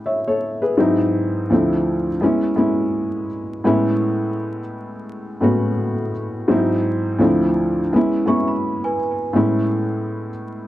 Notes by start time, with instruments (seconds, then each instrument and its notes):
0.06 felt piano C#5 E5
0.28 felt piano A4 C#5
0.62 felt piano G#4 B4
0.77 felt piano G#2 F#3 C4 D#4 E4
1.50 felt piano D2 F3 A3 C4 E4
2.21 felt piano G#3 B3 C#4 E4
2.56 felt piano G#3 B3 C#4 E4
3.64 felt piano A2 G#3 B3 C#4 E4
5.41 felt piano A2 G#3 B3 C#4 F#4
6.48 felt piano G#2 F#3 C4 D#4 E4
7.19 felt piano D2 F3 A3 C4 E4
7.93 felt piano G#3 B3 C#4 E4
8.26 felt piano G#3 B3 C#4 E4, celesta E5 C#6
8.48 celesta B5
8.84 celesta B4 G#5
9.33 felt piano A2 G#3 B3 C#4 E4